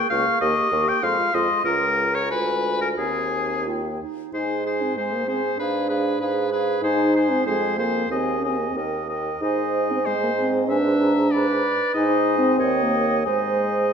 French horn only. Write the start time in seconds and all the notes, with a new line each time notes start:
Already playing: A#3
0.11 A#3
0.42 A#3
0.72 A#3
1.04 G#3
1.34 G#3
1.65 G#3
2.30 G#3
2.98 C4
3.67 A#3
4.34 D#4
4.82 C4
4.97 G#3
5.13 A#3
5.28 C4
5.59 D4
6.83 D#4
7.31 C4
7.46 G#3
7.78 A#3
8.10 C4
8.40 C#4
8.49 C4
8.59 A#3
8.69 C4
9.42 D#4
9.91 C4
10.07 G#3
10.24 A#3
10.39 C4
10.71 D4
11.95 D#4
12.39 C4
12.83 A#3
13.27 G#3